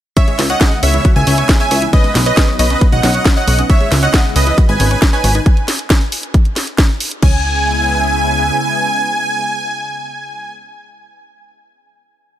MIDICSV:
0, 0, Header, 1, 7, 480
1, 0, Start_track
1, 0, Key_signature, 4, "minor"
1, 0, Tempo, 441176
1, 182, Time_signature, 4, 2, 24, 8
1, 13485, End_track
2, 0, Start_track
2, 0, Title_t, "Synth pluck"
2, 0, Program_c, 0, 84
2, 182, Note_on_c, 0, 76, 97
2, 426, Note_off_c, 0, 76, 0
2, 541, Note_on_c, 0, 78, 97
2, 786, Note_off_c, 0, 78, 0
2, 902, Note_on_c, 0, 76, 93
2, 1146, Note_off_c, 0, 76, 0
2, 1261, Note_on_c, 0, 80, 97
2, 1587, Note_off_c, 0, 80, 0
2, 1742, Note_on_c, 0, 80, 98
2, 1986, Note_off_c, 0, 80, 0
2, 2101, Note_on_c, 0, 75, 104
2, 2345, Note_off_c, 0, 75, 0
2, 2462, Note_on_c, 0, 75, 101
2, 2706, Note_off_c, 0, 75, 0
2, 2822, Note_on_c, 0, 75, 93
2, 3066, Note_off_c, 0, 75, 0
2, 3182, Note_on_c, 0, 78, 98
2, 3507, Note_off_c, 0, 78, 0
2, 3663, Note_on_c, 0, 78, 96
2, 3906, Note_off_c, 0, 78, 0
2, 4022, Note_on_c, 0, 76, 102
2, 4266, Note_off_c, 0, 76, 0
2, 4382, Note_on_c, 0, 78, 96
2, 4626, Note_off_c, 0, 78, 0
2, 4742, Note_on_c, 0, 75, 93
2, 4986, Note_off_c, 0, 75, 0
2, 5101, Note_on_c, 0, 80, 97
2, 5427, Note_off_c, 0, 80, 0
2, 5582, Note_on_c, 0, 80, 94
2, 5826, Note_off_c, 0, 80, 0
2, 7862, Note_on_c, 0, 80, 92
2, 11446, Note_off_c, 0, 80, 0
2, 13485, End_track
3, 0, Start_track
3, 0, Title_t, "Supersaw synth"
3, 0, Program_c, 1, 81
3, 182, Note_on_c, 1, 76, 102
3, 183, Note_on_c, 1, 73, 80
3, 426, Note_off_c, 1, 73, 0
3, 426, Note_off_c, 1, 76, 0
3, 542, Note_on_c, 1, 75, 81
3, 542, Note_on_c, 1, 78, 92
3, 786, Note_off_c, 1, 75, 0
3, 786, Note_off_c, 1, 78, 0
3, 902, Note_on_c, 1, 73, 81
3, 902, Note_on_c, 1, 76, 98
3, 1146, Note_off_c, 1, 73, 0
3, 1146, Note_off_c, 1, 76, 0
3, 1263, Note_on_c, 1, 76, 81
3, 1263, Note_on_c, 1, 80, 102
3, 1587, Note_off_c, 1, 76, 0
3, 1588, Note_off_c, 1, 80, 0
3, 1742, Note_on_c, 1, 76, 82
3, 1743, Note_on_c, 1, 80, 100
3, 1986, Note_off_c, 1, 76, 0
3, 1986, Note_off_c, 1, 80, 0
3, 2102, Note_on_c, 1, 71, 81
3, 2102, Note_on_c, 1, 75, 105
3, 2346, Note_off_c, 1, 71, 0
3, 2346, Note_off_c, 1, 75, 0
3, 2462, Note_on_c, 1, 75, 98
3, 2463, Note_on_c, 1, 71, 77
3, 2706, Note_off_c, 1, 71, 0
3, 2706, Note_off_c, 1, 75, 0
3, 2822, Note_on_c, 1, 71, 80
3, 2822, Note_on_c, 1, 75, 99
3, 3066, Note_off_c, 1, 71, 0
3, 3066, Note_off_c, 1, 75, 0
3, 3183, Note_on_c, 1, 78, 104
3, 3184, Note_on_c, 1, 75, 86
3, 3508, Note_off_c, 1, 75, 0
3, 3508, Note_off_c, 1, 78, 0
3, 3662, Note_on_c, 1, 75, 80
3, 3662, Note_on_c, 1, 78, 101
3, 3906, Note_off_c, 1, 75, 0
3, 3906, Note_off_c, 1, 78, 0
3, 4022, Note_on_c, 1, 73, 84
3, 4022, Note_on_c, 1, 76, 105
3, 4266, Note_off_c, 1, 73, 0
3, 4266, Note_off_c, 1, 76, 0
3, 4381, Note_on_c, 1, 75, 80
3, 4381, Note_on_c, 1, 78, 95
3, 4625, Note_off_c, 1, 75, 0
3, 4625, Note_off_c, 1, 78, 0
3, 4741, Note_on_c, 1, 71, 76
3, 4741, Note_on_c, 1, 75, 102
3, 4985, Note_off_c, 1, 71, 0
3, 4985, Note_off_c, 1, 75, 0
3, 5101, Note_on_c, 1, 71, 81
3, 5101, Note_on_c, 1, 80, 102
3, 5427, Note_off_c, 1, 71, 0
3, 5427, Note_off_c, 1, 80, 0
3, 5581, Note_on_c, 1, 71, 78
3, 5581, Note_on_c, 1, 80, 103
3, 5825, Note_off_c, 1, 71, 0
3, 5825, Note_off_c, 1, 80, 0
3, 7861, Note_on_c, 1, 80, 115
3, 11446, Note_off_c, 1, 80, 0
3, 13485, End_track
4, 0, Start_track
4, 0, Title_t, "Synth arpeggio sound"
4, 0, Program_c, 2, 84
4, 182, Note_on_c, 2, 61, 103
4, 227, Note_off_c, 2, 61, 0
4, 302, Note_on_c, 2, 56, 83
4, 347, Note_off_c, 2, 56, 0
4, 422, Note_on_c, 2, 61, 73
4, 497, Note_off_c, 2, 61, 0
4, 542, Note_on_c, 2, 73, 78
4, 655, Note_off_c, 2, 73, 0
4, 662, Note_on_c, 2, 68, 84
4, 737, Note_off_c, 2, 68, 0
4, 902, Note_on_c, 2, 61, 77
4, 947, Note_off_c, 2, 61, 0
4, 1022, Note_on_c, 2, 64, 76
4, 1135, Note_off_c, 2, 64, 0
4, 1142, Note_on_c, 2, 66, 82
4, 1217, Note_off_c, 2, 66, 0
4, 1262, Note_on_c, 2, 56, 79
4, 1307, Note_off_c, 2, 56, 0
4, 1382, Note_on_c, 2, 61, 81
4, 1457, Note_off_c, 2, 61, 0
4, 1502, Note_on_c, 2, 73, 80
4, 1615, Note_off_c, 2, 73, 0
4, 1622, Note_on_c, 2, 68, 86
4, 1697, Note_off_c, 2, 68, 0
4, 1742, Note_on_c, 2, 73, 80
4, 1849, Note_off_c, 2, 73, 0
4, 1862, Note_on_c, 2, 73, 82
4, 1975, Note_off_c, 2, 73, 0
4, 1982, Note_on_c, 2, 64, 79
4, 2095, Note_off_c, 2, 64, 0
4, 2102, Note_on_c, 2, 61, 87
4, 2215, Note_off_c, 2, 61, 0
4, 2222, Note_on_c, 2, 56, 78
4, 2267, Note_off_c, 2, 56, 0
4, 2342, Note_on_c, 2, 61, 77
4, 2417, Note_off_c, 2, 61, 0
4, 2462, Note_on_c, 2, 73, 76
4, 2575, Note_off_c, 2, 73, 0
4, 2582, Note_on_c, 2, 68, 81
4, 2657, Note_off_c, 2, 68, 0
4, 2702, Note_on_c, 2, 73, 77
4, 2777, Note_off_c, 2, 73, 0
4, 2822, Note_on_c, 2, 73, 73
4, 2935, Note_off_c, 2, 73, 0
4, 2943, Note_on_c, 2, 61, 78
4, 3017, Note_off_c, 2, 61, 0
4, 3063, Note_on_c, 2, 59, 98
4, 3137, Note_off_c, 2, 59, 0
4, 3182, Note_on_c, 2, 56, 79
4, 3227, Note_off_c, 2, 56, 0
4, 3302, Note_on_c, 2, 61, 79
4, 3377, Note_off_c, 2, 61, 0
4, 3423, Note_on_c, 2, 73, 77
4, 3535, Note_off_c, 2, 73, 0
4, 3542, Note_on_c, 2, 61, 108
4, 3655, Note_off_c, 2, 61, 0
4, 3662, Note_on_c, 2, 73, 77
4, 3737, Note_off_c, 2, 73, 0
4, 3782, Note_on_c, 2, 73, 79
4, 3895, Note_off_c, 2, 73, 0
4, 3902, Note_on_c, 2, 61, 76
4, 3977, Note_off_c, 2, 61, 0
4, 4022, Note_on_c, 2, 61, 103
4, 4067, Note_off_c, 2, 61, 0
4, 4142, Note_on_c, 2, 56, 78
4, 4187, Note_off_c, 2, 56, 0
4, 4262, Note_on_c, 2, 61, 75
4, 4337, Note_off_c, 2, 61, 0
4, 4382, Note_on_c, 2, 73, 80
4, 4495, Note_off_c, 2, 73, 0
4, 4502, Note_on_c, 2, 68, 82
4, 4577, Note_off_c, 2, 68, 0
4, 4742, Note_on_c, 2, 61, 79
4, 4787, Note_off_c, 2, 61, 0
4, 4862, Note_on_c, 2, 64, 77
4, 4975, Note_off_c, 2, 64, 0
4, 4982, Note_on_c, 2, 66, 85
4, 5057, Note_off_c, 2, 66, 0
4, 5102, Note_on_c, 2, 56, 78
4, 5147, Note_off_c, 2, 56, 0
4, 5222, Note_on_c, 2, 61, 79
4, 5297, Note_off_c, 2, 61, 0
4, 5342, Note_on_c, 2, 73, 77
4, 5455, Note_off_c, 2, 73, 0
4, 5462, Note_on_c, 2, 68, 88
4, 5537, Note_off_c, 2, 68, 0
4, 5582, Note_on_c, 2, 73, 78
4, 5689, Note_off_c, 2, 73, 0
4, 5702, Note_on_c, 2, 73, 77
4, 5815, Note_off_c, 2, 73, 0
4, 5822, Note_on_c, 2, 63, 80
4, 5935, Note_off_c, 2, 63, 0
4, 7862, Note_on_c, 2, 61, 98
4, 8085, Note_off_c, 2, 61, 0
4, 13485, End_track
5, 0, Start_track
5, 0, Title_t, "Analog synth pad"
5, 0, Program_c, 3, 89
5, 183, Note_on_c, 3, 49, 84
5, 183, Note_on_c, 3, 56, 77
5, 183, Note_on_c, 3, 59, 77
5, 183, Note_on_c, 3, 64, 86
5, 2083, Note_off_c, 3, 49, 0
5, 2083, Note_off_c, 3, 56, 0
5, 2083, Note_off_c, 3, 64, 0
5, 2102, Note_on_c, 3, 63, 90
5, 2103, Note_on_c, 3, 54, 79
5, 4003, Note_off_c, 3, 54, 0
5, 4003, Note_off_c, 3, 63, 0
5, 4023, Note_on_c, 3, 49, 76
5, 4023, Note_on_c, 3, 56, 74
5, 4023, Note_on_c, 3, 64, 84
5, 4973, Note_off_c, 3, 49, 0
5, 4973, Note_off_c, 3, 64, 0
5, 4982, Note_on_c, 3, 63, 91
5, 5899, Note_off_c, 3, 59, 0
5, 5923, Note_off_c, 3, 56, 0
5, 5932, Note_off_c, 3, 63, 0
5, 7862, Note_on_c, 3, 49, 83
5, 7862, Note_on_c, 3, 56, 79
5, 7862, Note_on_c, 3, 59, 73
5, 7862, Note_on_c, 3, 64, 90
5, 11447, Note_off_c, 3, 49, 0
5, 11447, Note_off_c, 3, 56, 0
5, 11447, Note_off_c, 3, 59, 0
5, 11447, Note_off_c, 3, 64, 0
5, 13485, End_track
6, 0, Start_track
6, 0, Title_t, "Analog synth bass"
6, 0, Program_c, 4, 38
6, 422, Note_on_c, 4, 37, 104
6, 602, Note_off_c, 4, 37, 0
6, 902, Note_on_c, 4, 37, 84
6, 1082, Note_off_c, 4, 37, 0
6, 1262, Note_on_c, 4, 37, 102
6, 1352, Note_off_c, 4, 37, 0
6, 1382, Note_on_c, 4, 37, 91
6, 1562, Note_off_c, 4, 37, 0
6, 1862, Note_on_c, 4, 37, 90
6, 2042, Note_off_c, 4, 37, 0
6, 2342, Note_on_c, 4, 35, 99
6, 2522, Note_off_c, 4, 35, 0
6, 2822, Note_on_c, 4, 35, 87
6, 3002, Note_off_c, 4, 35, 0
6, 3182, Note_on_c, 4, 35, 100
6, 3272, Note_off_c, 4, 35, 0
6, 3302, Note_on_c, 4, 35, 92
6, 3482, Note_off_c, 4, 35, 0
6, 3782, Note_on_c, 4, 35, 90
6, 3962, Note_off_c, 4, 35, 0
6, 4262, Note_on_c, 4, 37, 100
6, 4442, Note_off_c, 4, 37, 0
6, 4742, Note_on_c, 4, 37, 88
6, 4922, Note_off_c, 4, 37, 0
6, 5101, Note_on_c, 4, 32, 100
6, 5192, Note_off_c, 4, 32, 0
6, 5222, Note_on_c, 4, 32, 89
6, 5402, Note_off_c, 4, 32, 0
6, 5702, Note_on_c, 4, 32, 94
6, 5882, Note_off_c, 4, 32, 0
6, 7862, Note_on_c, 4, 37, 93
6, 9258, Note_off_c, 4, 37, 0
6, 13485, End_track
7, 0, Start_track
7, 0, Title_t, "Drums"
7, 181, Note_on_c, 9, 42, 82
7, 182, Note_on_c, 9, 36, 114
7, 290, Note_off_c, 9, 36, 0
7, 290, Note_off_c, 9, 42, 0
7, 302, Note_on_c, 9, 42, 37
7, 410, Note_off_c, 9, 42, 0
7, 422, Note_on_c, 9, 38, 64
7, 422, Note_on_c, 9, 46, 108
7, 531, Note_off_c, 9, 38, 0
7, 531, Note_off_c, 9, 46, 0
7, 542, Note_on_c, 9, 42, 55
7, 651, Note_off_c, 9, 42, 0
7, 662, Note_on_c, 9, 36, 124
7, 662, Note_on_c, 9, 38, 125
7, 662, Note_on_c, 9, 42, 86
7, 770, Note_off_c, 9, 36, 0
7, 770, Note_off_c, 9, 38, 0
7, 770, Note_off_c, 9, 42, 0
7, 901, Note_on_c, 9, 46, 107
7, 1010, Note_off_c, 9, 46, 0
7, 1021, Note_on_c, 9, 42, 55
7, 1130, Note_off_c, 9, 42, 0
7, 1141, Note_on_c, 9, 42, 81
7, 1142, Note_on_c, 9, 36, 117
7, 1250, Note_off_c, 9, 36, 0
7, 1250, Note_off_c, 9, 42, 0
7, 1261, Note_on_c, 9, 42, 38
7, 1370, Note_off_c, 9, 42, 0
7, 1381, Note_on_c, 9, 46, 105
7, 1490, Note_off_c, 9, 46, 0
7, 1501, Note_on_c, 9, 42, 53
7, 1610, Note_off_c, 9, 42, 0
7, 1621, Note_on_c, 9, 38, 125
7, 1621, Note_on_c, 9, 42, 85
7, 1622, Note_on_c, 9, 36, 125
7, 1730, Note_off_c, 9, 36, 0
7, 1730, Note_off_c, 9, 38, 0
7, 1730, Note_off_c, 9, 42, 0
7, 1861, Note_on_c, 9, 46, 110
7, 1970, Note_off_c, 9, 46, 0
7, 1981, Note_on_c, 9, 42, 58
7, 2090, Note_off_c, 9, 42, 0
7, 2101, Note_on_c, 9, 42, 82
7, 2102, Note_on_c, 9, 36, 126
7, 2210, Note_off_c, 9, 36, 0
7, 2210, Note_off_c, 9, 42, 0
7, 2221, Note_on_c, 9, 42, 37
7, 2330, Note_off_c, 9, 42, 0
7, 2341, Note_on_c, 9, 38, 68
7, 2341, Note_on_c, 9, 46, 117
7, 2450, Note_off_c, 9, 38, 0
7, 2450, Note_off_c, 9, 46, 0
7, 2461, Note_on_c, 9, 42, 55
7, 2570, Note_off_c, 9, 42, 0
7, 2581, Note_on_c, 9, 38, 127
7, 2581, Note_on_c, 9, 42, 88
7, 2582, Note_on_c, 9, 36, 122
7, 2690, Note_off_c, 9, 38, 0
7, 2690, Note_off_c, 9, 42, 0
7, 2691, Note_off_c, 9, 36, 0
7, 2821, Note_on_c, 9, 46, 115
7, 2930, Note_off_c, 9, 46, 0
7, 2941, Note_on_c, 9, 42, 55
7, 3050, Note_off_c, 9, 42, 0
7, 3061, Note_on_c, 9, 42, 83
7, 3062, Note_on_c, 9, 36, 123
7, 3170, Note_off_c, 9, 36, 0
7, 3170, Note_off_c, 9, 42, 0
7, 3182, Note_on_c, 9, 42, 37
7, 3290, Note_off_c, 9, 42, 0
7, 3301, Note_on_c, 9, 38, 60
7, 3301, Note_on_c, 9, 46, 107
7, 3410, Note_off_c, 9, 38, 0
7, 3410, Note_off_c, 9, 46, 0
7, 3421, Note_on_c, 9, 42, 55
7, 3530, Note_off_c, 9, 42, 0
7, 3541, Note_on_c, 9, 36, 127
7, 3541, Note_on_c, 9, 38, 122
7, 3541, Note_on_c, 9, 42, 82
7, 3650, Note_off_c, 9, 36, 0
7, 3650, Note_off_c, 9, 38, 0
7, 3650, Note_off_c, 9, 42, 0
7, 3781, Note_on_c, 9, 46, 109
7, 3890, Note_off_c, 9, 46, 0
7, 3902, Note_on_c, 9, 42, 57
7, 4010, Note_off_c, 9, 42, 0
7, 4021, Note_on_c, 9, 42, 79
7, 4022, Note_on_c, 9, 36, 120
7, 4130, Note_off_c, 9, 36, 0
7, 4130, Note_off_c, 9, 42, 0
7, 4141, Note_on_c, 9, 42, 35
7, 4250, Note_off_c, 9, 42, 0
7, 4261, Note_on_c, 9, 38, 66
7, 4261, Note_on_c, 9, 46, 111
7, 4370, Note_off_c, 9, 38, 0
7, 4370, Note_off_c, 9, 46, 0
7, 4381, Note_on_c, 9, 42, 54
7, 4490, Note_off_c, 9, 42, 0
7, 4501, Note_on_c, 9, 38, 126
7, 4501, Note_on_c, 9, 42, 82
7, 4502, Note_on_c, 9, 36, 121
7, 4610, Note_off_c, 9, 36, 0
7, 4610, Note_off_c, 9, 38, 0
7, 4610, Note_off_c, 9, 42, 0
7, 4741, Note_on_c, 9, 46, 109
7, 4850, Note_off_c, 9, 46, 0
7, 4862, Note_on_c, 9, 42, 52
7, 4971, Note_off_c, 9, 42, 0
7, 4982, Note_on_c, 9, 36, 127
7, 4982, Note_on_c, 9, 42, 81
7, 5090, Note_off_c, 9, 36, 0
7, 5091, Note_off_c, 9, 42, 0
7, 5102, Note_on_c, 9, 42, 33
7, 5211, Note_off_c, 9, 42, 0
7, 5222, Note_on_c, 9, 46, 107
7, 5330, Note_off_c, 9, 46, 0
7, 5342, Note_on_c, 9, 42, 52
7, 5450, Note_off_c, 9, 42, 0
7, 5462, Note_on_c, 9, 36, 127
7, 5462, Note_on_c, 9, 38, 122
7, 5462, Note_on_c, 9, 42, 79
7, 5570, Note_off_c, 9, 36, 0
7, 5570, Note_off_c, 9, 38, 0
7, 5570, Note_off_c, 9, 42, 0
7, 5701, Note_on_c, 9, 46, 110
7, 5810, Note_off_c, 9, 46, 0
7, 5821, Note_on_c, 9, 42, 51
7, 5930, Note_off_c, 9, 42, 0
7, 5941, Note_on_c, 9, 36, 127
7, 5941, Note_on_c, 9, 42, 76
7, 6050, Note_off_c, 9, 36, 0
7, 6050, Note_off_c, 9, 42, 0
7, 6061, Note_on_c, 9, 42, 34
7, 6170, Note_off_c, 9, 42, 0
7, 6181, Note_on_c, 9, 38, 62
7, 6181, Note_on_c, 9, 46, 115
7, 6290, Note_off_c, 9, 38, 0
7, 6290, Note_off_c, 9, 46, 0
7, 6301, Note_on_c, 9, 42, 51
7, 6410, Note_off_c, 9, 42, 0
7, 6421, Note_on_c, 9, 36, 123
7, 6421, Note_on_c, 9, 38, 127
7, 6421, Note_on_c, 9, 42, 79
7, 6530, Note_off_c, 9, 36, 0
7, 6530, Note_off_c, 9, 38, 0
7, 6530, Note_off_c, 9, 42, 0
7, 6541, Note_on_c, 9, 42, 36
7, 6650, Note_off_c, 9, 42, 0
7, 6661, Note_on_c, 9, 46, 113
7, 6769, Note_off_c, 9, 46, 0
7, 6781, Note_on_c, 9, 42, 51
7, 6890, Note_off_c, 9, 42, 0
7, 6900, Note_on_c, 9, 42, 77
7, 6901, Note_on_c, 9, 36, 124
7, 7009, Note_off_c, 9, 42, 0
7, 7010, Note_off_c, 9, 36, 0
7, 7021, Note_on_c, 9, 42, 34
7, 7129, Note_off_c, 9, 42, 0
7, 7141, Note_on_c, 9, 38, 57
7, 7141, Note_on_c, 9, 46, 108
7, 7250, Note_off_c, 9, 38, 0
7, 7250, Note_off_c, 9, 46, 0
7, 7261, Note_on_c, 9, 42, 51
7, 7370, Note_off_c, 9, 42, 0
7, 7381, Note_on_c, 9, 38, 118
7, 7381, Note_on_c, 9, 42, 77
7, 7382, Note_on_c, 9, 36, 127
7, 7490, Note_off_c, 9, 36, 0
7, 7490, Note_off_c, 9, 38, 0
7, 7490, Note_off_c, 9, 42, 0
7, 7621, Note_on_c, 9, 46, 116
7, 7730, Note_off_c, 9, 46, 0
7, 7741, Note_on_c, 9, 42, 54
7, 7850, Note_off_c, 9, 42, 0
7, 7861, Note_on_c, 9, 49, 86
7, 7862, Note_on_c, 9, 36, 112
7, 7969, Note_off_c, 9, 49, 0
7, 7970, Note_off_c, 9, 36, 0
7, 13485, End_track
0, 0, End_of_file